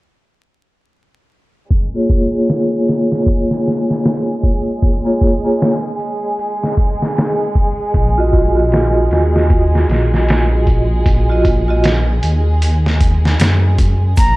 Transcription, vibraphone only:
1.94 A#3 F4 G#4 C#5
2.31 A#3 F4 G#4 C#5
5.05 A#3 F4 G#4 C#5
5.44 A#3 F4 G#4 C#5
8.18 F4 F#4 D#5
8.54 F4 F#4 D#5
11.29 F4 F#4 D#5
11.68 F4 F#4 D#5

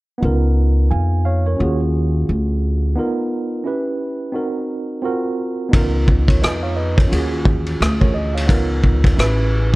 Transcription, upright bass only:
0.22 C#2
0.91 F2
1.60 D#2
2.29 D2
5.74 C#2
6.43 F2
7.12 D#2
7.80 D2
8.49 C#2
9.18 A1

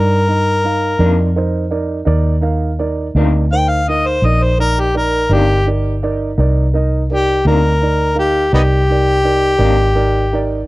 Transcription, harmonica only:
Already playing: A#4
3.52 G5
3.69 F5
3.88 D#5
4.06 C5
4.26 D#5
4.43 C5
4.60 A#4
4.80 G4
4.97 A#4
5.33 G4
7.12 G4
7.48 A#4
8.19 G4
8.54 B3 D#4 G4

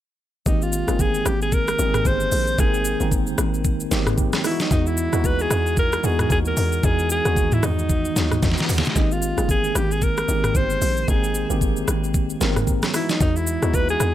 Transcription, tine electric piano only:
0.46 D#3 G#3 A#3 C4 G4
0.88 D#3 G#3 A#3 C4 G#4
1.78 D#3 G#3 A#3 C4 G4
1.86 G#4
2.58 D#3 G#3 A#3 C4 A#4
3.00 D#3 G#3 A#3 C4 D#4
3.91 D#3 G#3 A#3 C4 G4
4.44 E3 G#3 B3 D#4 E4
4.51 F#4
5.13 G#3 B3 D#4 E4 F#4
6.03 E3 G#3 B3 D#4 F#4
6.83 E3 G#3 B3 D#4 G#4
7.25 D#3 G#3 B3 D#4 F#4
8.16 E3 G#3 B3 D#4 F#4
8.95 D#3 G#3 A#3 C4 G4
9.37 D#3 G#3 A#3 C4 G#4
10.28 D#3 G#3 A#3 C4 G4
11.08 D#3 G#3 A#3 C4 D#4
11.50 D#3 G#3 A#3 C4 G4
12.40 D#3 G#3 A#3 C4 A#4
12.93 E3 G#3 B3 D#4 F#4
13.62 G#3 B3 D#4 E4 F#4

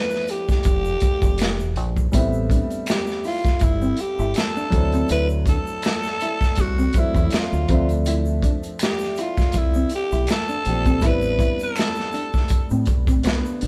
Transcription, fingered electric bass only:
0.66 F1
1.22 F1
1.60 E1
1.77 A#1
2.14 A1
3.62 G1
4.19 G1
4.73 D2
5.10 D2
6.58 C2
7.15 E2
7.53 D2
7.69 D2
9.54 C2
10.12 B1
10.66 A#1
11.03 A1
12.71 A2
12.88 B1
13.08 A1
13.25 C2
13.62 A#1

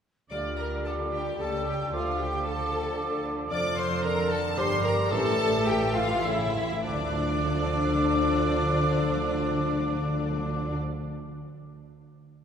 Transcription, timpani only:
0.31 D3
5.19 A2
5.28 A2
5.43 A2
5.82 A2
5.90 A2
5.98 A2
6.06 A2
6.14 A2
6.22 A2
6.30 A2
6.39 A2
6.47 A2
6.55 A2
6.64 A2
6.72 A2
6.85 D3
6.93 D3
7.00 D3
7.07 D3
7.15 D3
7.23 D3
7.30 D3
7.37 D3
7.44 D3
7.50 D3
7.58 D3
7.73 D3
7.80 D3
7.87 D3
7.95 D3
8.02 D3
8.09 D3
8.16 D3
8.23 D3
8.31 D3
8.37 D3
8.44 D3
8.51 D3
8.58 D3
8.66 D3
8.73 D3
8.80 D3
8.88 D3
8.94 D3
9.01 D3
9.16 D3
9.23 D3
9.30 D3
9.37 D3
9.44 D3
9.51 D3
9.58 D3
9.66 D3
9.73 D3
9.80 D3
9.88 D3
9.95 D3
10.02 D3
10.09 D3
10.16 D3
10.24 D3
10.31 D3
10.38 D3
10.46 D3
10.53 D3
10.60 D3
10.67 D3
10.75 D3

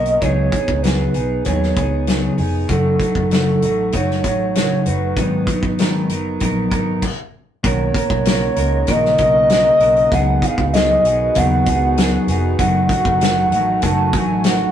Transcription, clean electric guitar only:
Already playing: A#3 C#4 F#4 A#4
0.21 C#3 F#3 B3 D#4 G#4
0.50 B3 D#4 G#4
0.84 C#3 F#3 B3 D#4 G#4
1.15 B3 D#4 G#4
1.46 F#3 B3 D#4 G#4
1.76 B3 D#4 G#4
2.08 C#3 F#3 B3 D#4 G#4
2.38 B3 D#4 G#4
2.68 F#2 C#3 F#3 A3 D#4 F#4
3.00 F#3 A3 D#4 F#4
3.31 F#2 C#3 F#3 A3 D#4 F#4
3.63 F#3 A3 D#4 F#4
3.93 F#3 A3 D#4 F#4
4.23 F#3 A3 D#4 F#4
4.55 F#2 C#3 F#3 A3 D#4 F#4
4.86 F#3 A3 D#4 F#4
5.17 G#2 D#3 F#3 B3 D#4
5.50 F#3 B3 D#4
5.79 G#2 D#3 F#3 B3 D#4 A#4
6.10 F#3 B3 D#4 A#4
6.41 F#3 B3 D#4 A#4
6.70 F#3 B3 D#4 A#4
7.63 B2 D#3 A#3 C#4 F#4 A#4
7.95 A#3 C#4 F#4 A#4
8.26 A#3 C#4 F#4 A#4
8.56 A#3 C#4 F#4 A#4
8.88 D#3 A#3 C#4 F#4 A#4
9.19 A#3 C#4 F#4 A#4
9.50 A#3 C#4 F#4 A#4
9.81 A#3 C#4 F#4 A#4
10.11 C#3 F#3 B3 D#4 G#4
10.43 B3 D#4 G#4
10.74 F#3 B3 D#4 G#4
11.05 B3 D#4 G#4
11.35 C#3 F#3 B3 D#4 G#4
11.67 B3 D#4 G#4
11.99 F#3 B3 D#4 G#4
12.29 B3 D#4 G#4
12.59 F#2 C#3 F#3 A3 D#4 F#4
12.90 F#3 A3 D#4 F#4
13.22 F#3 A3 D#4 F#4
13.53 F#3 A3 D#4 F#4
13.82 F#2 C#3 F#3 A3 D#4 F#4
14.15 F#3 A3 D#4 F#4
14.45 F#3 A3 D#4 F#4

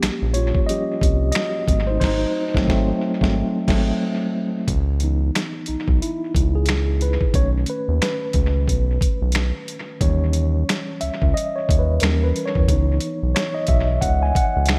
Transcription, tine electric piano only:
Already playing: F3 G3 A#3 C#4 G4
0.34 F4 C#5
0.66 F3 G3 C#4 G4 D#5
1.32 F#4 D#5
1.68 F#3 A3 C4
1.87 D#4 C5
2.00 D#4 C5
2.56 F#3 A3 C4
2.69 F#3 A3 C4
3.22 F#3 A3 C4
3.67 F#3 A3 C4
5.01 E3 B3 D#4
5.68 D#4
6.02 E4
6.55 G#4
7.02 B4
7.34 D#3 A3 C#4 C#5
7.70 B4
8.02 B4
10.01 E3 G3 C#4 C#5
11.01 E5
11.34 D#5
11.56 C#5
11.79 B4
12.02 E3 G3 C#4 A#4
12.24 B4
12.46 C#5
12.69 E3 B3 D#4
13.35 C#5
13.55 D#5
13.68 E5
14.01 F#5
14.23 G#5
14.37 F#5

